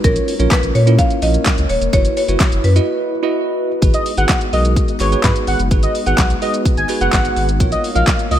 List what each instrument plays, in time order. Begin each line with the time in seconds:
0.04 sub bass A#1, glass harmonica A#3 A#4 C#5, tine electric piano C#4 F4 A#4 C#5, marimba A#4, kick, closed hi-hat, shaker
0.16 closed hi-hat, shaker
0.28 open hi-hat, shaker
0.39 sub bass A#1, tine electric piano C#4 F4 A#4 C#5, closed hi-hat, shaker
0.51 marimba B4, kick, snare, clap, closed hi-hat, shaker
0.63 sub bass A#1, closed hi-hat, shaker
0.75 sub bass A#2, marimba C#5, open hi-hat, shaker
0.87 tine electric piano C#4 E4 F4 A#4, closed hi-hat, shaker
0.99 marimba F5, kick, closed hi-hat, shaker
1.10 closed hi-hat, shaker
1.22 sub bass A#1, marimba D#5, open hi-hat, shaker
1.34 closed hi-hat, shaker
1.46 kick, snare, clap, closed hi-hat, shaker
1.58 sub bass C#2, closed hi-hat, shaker
1.69 sub bass D#1, marimba C#5, open hi-hat, shaker
1.81 sub bass E1, closed hi-hat, shaker
1.93 sub bass F#1, tine electric piano E4 F#4 B4 C#5, glass harmonica E4 F#4 B4, marimba C#5, kick, closed hi-hat, shaker
2.05 closed hi-hat, shaker
2.17 marimba C#5, open hi-hat, shaker
2.28 sub bass F#1, tine electric piano E4 F#4 B4 C#5, closed hi-hat, shaker
2.40 kick, snare, clap, closed hi-hat, shaker
2.52 sub bass F#1, closed hi-hat, shaker
2.64 sub bass F#2, marimba B4, open hi-hat, shaker
2.76 tine electric piano E4 F#4 B4 D#5, closed hi-hat, shaker
3.23 tine electric piano E4 F#4 B4 D#5
3.82 sub bass G#1, glass harmonica G#3 B3 D#4 F#4, tine electric piano F#4 G#4 B4, kick, closed hi-hat, shaker
3.94 analog synth lead D#5, closed hi-hat, shaker
4.06 open hi-hat, shaker
4.17 sub bass G#1, tine electric piano F#4 G#4 B4, analog synth lead F#5, closed hi-hat, shaker
4.29 kick, snare, clap, closed hi-hat, shaker
4.41 closed hi-hat, shaker
4.53 sub bass B1, tine electric piano F#4 G#4 A#4, analog synth lead D#5, open hi-hat, shaker
4.65 closed hi-hat, shaker
4.76 kick, closed hi-hat, shaker
4.88 closed hi-hat, shaker
5.00 sub bass G#1, tine electric piano F#4 G#4 B4, analog synth lead C#5, clap, open hi-hat, shaker
5.12 tine electric piano F#4 G#4 B4, closed hi-hat, shaker
5.24 sub bass G#2, analog synth lead B4, kick, snare, clap, closed hi-hat, shaker
5.36 closed hi-hat, shaker
5.47 sub bass G#1, analog synth lead F#5, open hi-hat, shaker
5.59 sub bass F#1, closed hi-hat, shaker
5.71 sub bass G#1, tine electric piano F#4 G#4 B4, kick, closed hi-hat, shaker
5.83 analog synth lead D#5, closed hi-hat, shaker
5.95 open hi-hat, shaker
6.06 sub bass G#1, tine electric piano F#4 G#4 B4, analog synth lead F#5, closed hi-hat, shaker
6.18 sub bass B1, kick, snare, clap, closed hi-hat, shaker
6.30 closed hi-hat, shaker
6.42 tine electric piano F#4 G#4 B4, analog synth lead D#5, open hi-hat, shaker
6.54 closed hi-hat, shaker
6.65 kick, closed hi-hat, shaker
6.77 sub bass G#1, analog synth lead G#5, closed hi-hat, shaker
6.89 tine electric piano F#4 G#4 B4, clap, open hi-hat, shaker
7.01 sub bass F#1, tine electric piano F#4 G#4 B4, analog synth lead F#5, closed hi-hat, shaker
7.13 sub bass G#1, analog synth lead F#5, kick, snare, clap, closed hi-hat, shaker
7.25 closed hi-hat, shaker
7.36 sub bass G#1, open hi-hat, shaker
7.49 closed hi-hat, shaker
7.60 sub bass A#1, glass harmonica A#3 A#4 C#5 F5, tine electric piano F4 A#4 C#5, kick, closed hi-hat, shaker
7.72 analog synth lead D#5, closed hi-hat, shaker
7.84 open hi-hat, shaker
7.95 sub bass A#1, tine electric piano F4 A#4 D#5, analog synth lead F5, closed hi-hat, shaker
8.07 kick, snare, clap, closed hi-hat, shaker
8.19 closed hi-hat, shaker
8.31 sub bass C#2, tine electric piano F4 A#4 D#5, analog synth lead D#5, open hi-hat, shaker